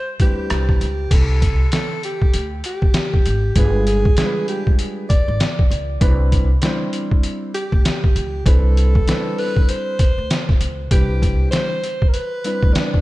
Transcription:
Already playing: alto saxophone C5
0.19 upright bass D2, grand piano G3 C4 D4 E4 B4, alto saxophone G4, kick, closed hi-hat
0.50 upright bass C2, cross-stick, closed hi-hat
0.69 kick, cross-stick
0.80 upright bass C#2, closed hi-hat
1.11 upright bass C2, alto saxophone A4, kick, closed hi-hat, crash
1.42 kick, closed hi-hat
1.72 alto saxophone A4, snare, closed hi-hat
2.03 alto saxophone G4, closed hi-hat
2.22 kick
2.34 upright bass D2, closed hi-hat
2.64 alto saxophone G4, closed hi-hat
2.82 kick
2.94 snare, closed hi-hat
3.14 kick
3.26 upright bass G#1, closed hi-hat
3.56 upright bass G1, grand piano G3 G#3 D4 F4 B4, alto saxophone G#4, kick, closed hi-hat
3.87 alto saxophone G#4, closed hi-hat
4.05 kick
4.17 grand piano G3 G#3 D4 F4 G#4, alto saxophone G#4, snare, closed hi-hat
4.26 grand piano B4
4.48 alto saxophone G4, closed hi-hat
4.67 kick
4.79 closed hi-hat
5.09 alto saxophone D5, kick, closed hi-hat
5.28 upright bass G#1
5.40 snare, closed hi-hat
5.59 kick
5.70 upright bass C#2, closed hi-hat
6.00 upright bass C2, grand piano G3 C4 D4 E4 B4, kick, closed hi-hat
6.32 kick, closed hi-hat
6.62 grand piano G3 C4 D4 E4 C5, snare, closed hi-hat
6.93 closed hi-hat
7.11 kick
7.23 closed hi-hat
7.54 alto saxophone G4, closed hi-hat
7.72 upright bass D2, kick
7.85 snare, closed hi-hat
8.04 kick
8.16 upright bass C#2, closed hi-hat
8.45 upright bass C2, grand piano G3 C4 D4 E4 B4, alto saxophone A4, kick, closed hi-hat
8.77 closed hi-hat
8.95 kick
9.06 grand piano G3 C4 D4 E4 B4, snare, closed hi-hat
9.38 alto saxophone B4, open hi-hat
9.56 kick
9.69 alto saxophone C5, closed hi-hat
9.99 kick, closed hi-hat
10.18 upright bass D2
10.30 snare, closed hi-hat
10.49 kick, snare
10.60 upright bass C#2, closed hi-hat
10.91 upright bass C2, grand piano G3 C4 D4 E4 B4, alto saxophone G4, kick, closed hi-hat
11.22 kick, closed hi-hat
11.51 alto saxophone C5, snare, closed hi-hat
11.84 closed hi-hat
12.02 kick
12.09 alto saxophone A#4
12.13 alto saxophone B4, closed hi-hat
12.44 grand piano G3 C4 D4 E4 B4, closed hi-hat
12.63 upright bass D2, kick
12.74 alto saxophone D4, snare, closed hi-hat
12.94 kick

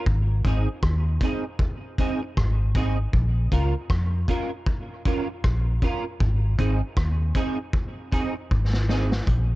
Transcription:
0.06 fingered electric bass G#1, kick
0.45 fingered electric bass G#1, clean electric guitar C4 D#4 G#4, kick, closed hi-hat
0.83 fingered electric bass D#2, kick, cross-stick
1.21 clean electric guitar C4 D#4 G#4, kick, closed hi-hat
1.59 kick
1.98 clean electric guitar C4 D#4 G#4, kick, closed hi-hat
2.22 muted clean electric guitar stroke
2.37 fingered electric bass G#1, kick, cross-stick
2.75 clean electric guitar C4 D#4 G#4, kick, closed hi-hat
3.13 fingered electric bass A#1, kick
3.52 fingered electric bass C#2, clean electric guitar C#4 F4 A#4, kick, closed hi-hat
3.90 fingered electric bass F2, kick, cross-stick
4.28 clean electric guitar C#4 F4 A#4, kick, closed hi-hat
4.66 kick
5.05 clean electric guitar C#4 F4 A#4, kick, closed hi-hat
5.28 muted clean electric guitar stroke
5.44 fingered electric bass A#1, kick, cross-stick
5.82 clean electric guitar C#4 F4 A#4, kick, closed hi-hat
6.20 fingered electric bass G#1, kick
6.58 fingered electric bass G#1, clean electric guitar C4 D#4 G#4, kick, closed hi-hat
6.97 fingered electric bass D#2, kick, cross-stick
7.35 clean electric guitar C4 D#4 G#4, kick, closed hi-hat
7.73 kick
8.12 clean electric guitar C4 D#4 G#4, kick, closed hi-hat
8.35 muted clean electric guitar stroke
8.51 fingered electric bass G#1, kick
8.73 snare
8.89 clean electric guitar C4 D#4 G#4, snare
9.12 muted clean electric guitar stroke, snare
9.27 fingered electric bass A#1, kick, hi-hat pedal

